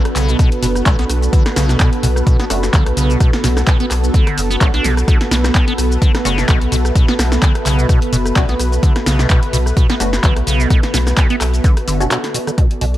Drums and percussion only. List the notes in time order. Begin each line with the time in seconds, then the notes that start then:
0.05 cross-stick, closed hi-hat
0.16 clap, open hi-hat, shaker
0.29 closed hi-hat, shaker
0.39 kick, cross-stick, closed hi-hat, shaker
0.52 closed hi-hat
0.63 open hi-hat, shaker
0.75 cross-stick, closed hi-hat, shaker
0.86 kick, clap, closed hi-hat, shaker
0.99 snare, closed hi-hat
1.09 cross-stick, open hi-hat, shaker
1.22 closed hi-hat, shaker
1.33 kick, closed hi-hat, shaker
1.46 cross-stick, snare, closed hi-hat
1.56 snare, open hi-hat, shaker
1.69 snare, closed hi-hat, shaker
1.80 kick, cross-stick, clap, closed hi-hat, shaker
1.93 closed hi-hat
2.03 open hi-hat, shaker
2.16 cross-stick, shaker
2.27 kick, closed hi-hat, shaker
2.40 snare, closed hi-hat
2.50 cross-stick, open hi-hat, shaker
2.63 snare, closed hi-hat, shaker
2.74 kick, clap, closed hi-hat, shaker
2.86 cross-stick, closed hi-hat
2.97 open hi-hat, shaker
3.10 closed hi-hat, shaker
3.20 kick, cross-stick, closed hi-hat, shaker
3.33 snare, closed hi-hat
3.44 snare, open hi-hat, shaker
3.57 cross-stick, snare, closed hi-hat, shaker
3.67 kick, clap, closed hi-hat, shaker
3.80 closed hi-hat
3.91 cross-stick, clap, open hi-hat, shaker
4.04 closed hi-hat, shaker
4.14 kick, closed hi-hat, shaker
4.27 cross-stick, closed hi-hat
4.38 open hi-hat, shaker
4.50 closed hi-hat, shaker
4.61 kick, cross-stick, clap, closed hi-hat, shaker
4.74 snare, closed hi-hat
4.84 open hi-hat, shaker
4.97 cross-stick, closed hi-hat, shaker
5.08 kick, cross-stick, closed hi-hat, shaker
5.21 snare, closed hi-hat
5.31 snare, open hi-hat, shaker
5.44 cross-stick, snare, closed hi-hat, shaker
5.55 kick, clap, closed hi-hat, shaker
5.68 closed hi-hat
5.78 cross-stick, open hi-hat, shaker
5.92 shaker
6.02 kick, closed hi-hat, shaker
6.15 cross-stick, snare, closed hi-hat
6.25 open hi-hat, shaker
6.38 snare, closed hi-hat, shaker
6.49 kick, cross-stick, clap, closed hi-hat, shaker
6.61 closed hi-hat
6.72 open hi-hat, shaker
6.85 cross-stick, closed hi-hat, shaker
6.95 kick, closed hi-hat, shaker
7.08 snare, closed hi-hat
7.19 cross-stick, snare, open hi-hat, shaker
7.32 snare, closed hi-hat, shaker
7.42 kick, clap, closed hi-hat, shaker
7.55 cross-stick, closed hi-hat
7.66 clap, open hi-hat, shaker
7.79 closed hi-hat, shaker
7.89 kick, cross-stick, closed hi-hat, shaker
8.02 closed hi-hat
8.13 open hi-hat, shaker
8.26 cross-stick, closed hi-hat, shaker
8.36 kick, clap, closed hi-hat, shaker
8.49 snare, closed hi-hat
8.60 cross-stick, open hi-hat, shaker
8.72 closed hi-hat, shaker
8.83 kick, closed hi-hat, shaker
8.96 cross-stick, snare, closed hi-hat
9.06 snare, open hi-hat, shaker
9.19 snare, closed hi-hat, shaker
9.30 kick, cross-stick, clap, closed hi-hat, shaker
9.43 closed hi-hat
9.53 open hi-hat, shaker
9.66 cross-stick, shaker
9.77 kick, closed hi-hat, shaker
9.90 snare, closed hi-hat
10.00 cross-stick, open hi-hat, shaker
10.13 snare, closed hi-hat, shaker
10.24 kick, clap, closed hi-hat, shaker
10.36 cross-stick, closed hi-hat
10.47 open hi-hat, shaker
10.60 closed hi-hat, shaker
10.70 kick, cross-stick, closed hi-hat, shaker
10.83 snare, closed hi-hat
10.94 snare, open hi-hat, shaker
11.07 cross-stick, snare, closed hi-hat, shaker
11.17 kick, clap, closed hi-hat, shaker
11.30 closed hi-hat
11.41 cross-stick, clap, open hi-hat, shaker
11.54 closed hi-hat, shaker
11.64 kick, closed hi-hat, shaker
11.77 cross-stick, closed hi-hat
11.88 open hi-hat, shaker
12.00 closed hi-hat, shaker
12.11 cross-stick, clap, closed hi-hat, shaker
12.24 snare, closed hi-hat
12.34 open hi-hat, shaker
12.47 cross-stick, closed hi-hat, shaker
12.58 kick, closed hi-hat
12.71 closed hi-hat
12.81 open hi-hat
12.94 closed hi-hat